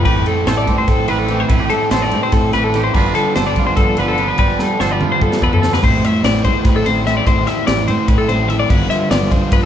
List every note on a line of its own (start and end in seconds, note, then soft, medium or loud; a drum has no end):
0.05 0.23 A1 medium
0.05 0.45 A2 medium
0.05 1.48 A2 medium
0.05 0.46 E3 loud
0.05 0.28 A3 loud
0.05 0.27 C4 loud
0.05 0.26 E4 loud
0.05 1.30 G4 medium
0.05 0.26 B4 medium
0.05 kick loud
0.05 crash medium
0.26 0.46 A3 medium
0.26 0.47 C4 medium
0.26 0.47 E4 medium
0.26 0.47 A4 medium
0.26 ride medium
0.46 0.68 A1 medium
0.46 0.88 A2 loud
0.46 0.88 E3 loud
0.46 0.68 A3 loud
0.46 1.48 A3 medium
0.46 0.67 C4 loud
0.46 0.66 E4 loud
0.46 1.08 A4 medium
0.46 0.57 C5 medium
0.46 snare loud
0.46 ride medium
0.58 0.78 D5 medium
0.67 0.76 A2 loud
0.67 1.09 A3 medium
0.67 1.08 C4 medium
0.67 2.12 C4 medium
0.67 1.07 E4 medium
0.67 kick medium
0.67 ride medium
0.78 0.88 C5 medium
0.88 1.05 A2 medium
0.88 1.09 A4 medium
0.88 kick loud
0.88 snare soft
0.88 ride loud
1.08 1.43 A1 medium
1.08 1.47 E3 medium
1.08 1.28 A3 medium
1.08 1.29 C4 medium
1.08 1.29 E4 medium
1.08 1.19 B4 medium
1.08 1.48 B4 medium
1.08 ride medium
1.19 1.40 A4 medium
1.28 1.49 E3 medium
1.28 1.50 A3 medium
1.28 1.50 C4 medium
1.28 1.51 E4 medium
1.28 1.48 G4 medium
1.28 ride medium
1.40 1.50 C5 medium
1.48 1.67 A1 loud
1.48 2.94 A2 medium
1.48 1.90 A2 medium
1.48 1.91 E3 loud
1.48 1.72 A3 loud
1.48 1.71 C4 loud
1.48 1.59 E4 medium
1.48 1.70 E4 loud
1.48 1.69 B4 medium
1.48 kick loud
1.48 ride loud
1.59 2.74 G4 medium
1.70 1.91 A3 medium
1.70 1.92 C4 medium
1.70 1.92 E4 medium
1.70 1.91 A4 medium
1.70 ride medium
1.91 2.13 A1 medium
1.91 2.33 A2 loud
1.91 2.33 E3 loud
1.91 2.92 A3 medium
1.91 2.13 A3 medium
1.91 2.12 C4 loud
1.91 2.11 E4 loud
1.91 2.54 A4 medium
1.91 2.02 C5 medium
1.91 snare loud
1.91 ride loud
2.02 2.23 D5 medium
2.11 2.21 A2 loud
2.11 2.54 A3 medium
2.11 2.95 C4 medium
2.11 2.53 C4 medium
2.11 2.52 E4 medium
2.11 ride medium
2.23 2.32 C5 medium
2.32 2.50 A2 medium
2.32 2.53 A4 medium
2.32 kick loud
2.32 snare soft
2.32 ride loud
2.53 2.88 A1 loud
2.53 2.93 E3 medium
2.53 2.74 A3 medium
2.53 2.75 C4 medium
2.53 2.75 E4 medium
2.53 2.64 B4 medium
2.53 2.93 B4 medium
2.53 snare soft
2.53 ride medium
2.64 2.83 A4 medium
2.74 2.94 E3 medium
2.74 2.94 A3 medium
2.74 2.94 C4 medium
2.74 2.95 E4 medium
2.74 2.95 G4 medium
2.74 snare soft
2.74 ride medium
2.84 2.94 C5 medium
2.94 3.12 G1 loud
2.94 3.36 G2 loud
2.94 3.36 D3 loud
2.94 3.18 F3 loud
2.94 4.38 G3 medium
2.94 3.17 B3 loud
2.94 3.36 D4 medium
2.94 3.16 D4 loud
2.94 3.58 F4 medium
2.94 3.14 B4 medium
2.94 3.36 B4 medium
2.94 kick loud
2.94 crash medium
3.15 3.37 F3 medium
3.15 3.37 B3 medium
3.15 3.38 D4 medium
3.15 3.35 A4 medium
3.15 snare soft
3.15 ride medium
3.36 3.58 G1 medium
3.36 3.78 G2 loud
3.36 3.78 D3 loud
3.36 3.58 F3 loud
3.36 3.57 B3 loud
3.36 4.37 D4 medium
3.36 3.56 D4 loud
3.36 3.47 A4 medium
3.36 3.46 C5 medium
3.36 snare loud
3.36 ride loud
3.47 3.98 B4 medium
3.47 3.66 D5 medium
3.56 3.65 G2 loud
3.56 3.99 F3 medium
3.56 3.98 B3 medium
3.56 3.97 D4 medium
3.56 4.38 F4 medium
3.56 kick medium
3.56 ride medium
3.67 3.76 C5 medium
3.77 3.94 G2 medium
3.77 3.98 A4 medium
3.77 kick loud
3.77 snare soft
3.77 ride medium
3.97 4.32 G1 medium
3.97 4.40 D3 medium
3.97 4.17 F3 medium
3.97 4.18 B3 medium
3.97 4.19 D4 medium
3.97 4.08 B4 medium
3.97 4.18 B4 medium
3.97 ride medium
4.08 4.28 A4 medium
4.18 4.38 D3 medium
4.18 4.38 F3 medium
4.18 4.39 B3 medium
4.18 4.39 D4 medium
4.18 4.37 B4 medium
4.18 ride medium
4.28 4.38 B4 medium
4.38 4.56 G1 loud
4.38 4.78 G2 medium
4.38 4.80 D3 loud
4.38 4.60 F3 loud
4.38 7.27 G3 medium
4.38 4.59 B3 loud
4.38 4.58 D4 loud
4.38 4.60 B4 loud
4.38 4.80 B4 medium
4.38 kick loud
4.38 ride medium
4.59 4.79 F3 medium
4.59 4.80 B3 medium
4.59 4.81 D4 medium
4.59 4.80 A4 medium
4.59 snare medium
4.80 5.03 G1 loud
4.80 5.21 G2 medium
4.80 5.22 D3 medium
4.80 5.02 F3 medium
4.80 5.01 B3 loud
4.80 5.80 D4 medium
4.80 5.00 D4 loud
4.80 4.91 A4 medium
4.80 4.91 C5 medium
4.80 snare medium
4.91 5.42 B4 medium
4.91 5.11 D5 medium
5.01 5.10 G2 loud
5.01 5.42 F3 medium
5.01 5.41 B3 medium
5.01 5.40 D4 medium
5.01 5.81 F4 medium
5.01 mid tom medium
5.12 5.22 C5 medium
5.21 5.38 G2 medium
5.21 5.42 A4 medium
5.21 kick loud
5.32 snare medium
5.41 5.76 E2 medium
5.41 5.83 D3 medium
5.41 5.61 F3 medium
5.41 5.62 B3 medium
5.41 5.62 D4 medium
5.41 5.52 A4 medium
5.41 5.53 B4 medium
5.41 kick medium
5.52 5.73 A4 medium
5.52 5.62 B4 soft
5.52 floor tom loud
5.62 5.81 D3 medium
5.62 5.82 F3 medium
5.62 5.82 B3 medium
5.62 5.82 D4 medium
5.62 5.73 A4 medium
5.62 snare loud
5.73 5.83 B4 medium
5.73 snare medium
5.82 6.00 A1 loud
5.82 6.23 A2 loud
5.82 6.24 E3 medium
5.82 6.04 A3 loud
5.82 6.04 C4 loud
5.82 6.02 E4 loud
5.82 6.05 C5 loud
5.82 kick loud
5.82 crash loud
6.02 6.24 A3 medium
6.02 6.25 C4 medium
6.02 6.25 E4 medium
6.02 6.24 E5 medium
6.02 ride medium
6.23 6.46 A1 loud
6.23 6.65 A2 medium
6.23 6.65 E3 loud
6.23 6.45 A3 loud
6.23 6.44 C4 loud
6.23 6.43 E4 loud
6.23 6.44 D5 medium
6.23 snare loud
6.23 ride loud
6.44 6.53 A2 loud
6.44 6.86 A3 medium
6.44 6.85 C4 medium
6.44 6.84 E4 medium
6.44 6.66 C5 medium
6.44 kick medium
6.44 ride medium
6.65 6.82 A2 loud
6.65 6.76 B4 medium
6.65 kick loud
6.65 snare soft
6.65 ride loud
6.76 6.86 A4 medium
6.85 7.20 A1 medium
6.85 7.05 A3 medium
6.85 7.06 C4 medium
6.85 7.06 E4 medium
6.85 7.06 C5 medium
6.85 ride medium
7.05 7.25 E3 medium
7.05 7.26 A3 medium
7.05 7.26 C4 medium
7.05 7.27 E4 medium
7.05 7.17 E5 medium
7.05 snare soft
7.05 ride medium
7.17 7.27 D5 medium
7.26 7.44 A1 loud
7.26 7.65 A2 medium
7.26 7.65 E3 loud
7.26 7.47 A3 loud
7.26 7.46 C4 loud
7.26 7.45 E4 loud
7.26 7.47 C5 medium
7.26 kick loud
7.26 ride loud
7.46 7.66 A3 medium
7.46 7.66 C4 medium
7.46 7.67 E4 medium
7.46 7.67 E5 medium
7.46 snare soft
7.46 ride medium
7.66 7.89 A1 loud
7.66 8.08 A2 medium
7.66 8.08 E3 loud
7.66 7.87 A3 loud
7.66 7.87 C4 loud
7.66 7.86 E4 loud
7.66 7.87 D5 medium
7.66 snare loud
7.66 ride loud
7.87 7.97 A2 loud
7.87 8.29 A3 medium
7.87 8.28 C4 medium
7.87 8.27 E4 medium
7.87 8.08 C5 medium
7.87 ride medium
8.08 8.25 A2 loud
8.08 8.19 B4 loud
8.08 kick loud
8.08 ride loud
8.18 8.29 A4 medium
8.29 8.63 A1 medium
8.29 8.48 A3 medium
8.29 8.49 C4 medium
8.29 8.49 E4 medium
8.29 8.48 C5 medium
8.29 ride medium
8.48 8.68 E3 medium
8.48 8.69 A3 medium
8.48 8.69 C4 medium
8.48 8.70 E4 medium
8.48 8.59 E5 medium
8.48 ride medium
8.59 8.70 D5 medium
8.69 8.87 G1 loud
8.69 9.09 G2 loud
8.69 9.09 D3 loud
8.69 8.92 F3 loud
8.69 8.91 B3 loud
8.69 8.89 F4 loud
8.69 8.90 B4 loud
8.69 kick loud
8.69 crash loud
8.90 9.11 F3 medium
8.90 9.11 B3 medium
8.90 9.11 F4 medium
8.90 9.11 E5 medium
8.90 snare soft
8.90 ride medium
9.10 9.33 G1 loud
9.10 9.51 G2 loud
9.10 9.52 D3 loud
9.10 9.31 F3 loud
9.10 9.30 B3 loud
9.10 9.29 F4 medium
9.10 9.31 D5 medium
9.10 snare loud
9.10 ride loud
9.30 9.40 G2 loud
9.30 9.65 F3 medium
9.30 9.65 B3 medium
9.30 9.65 F4 loud
9.30 9.52 C5 medium
9.30 kick medium
9.30 ride medium
9.52 9.65 G2 medium
9.52 9.63 B4 medium
9.52 kick loud
9.52 ride loud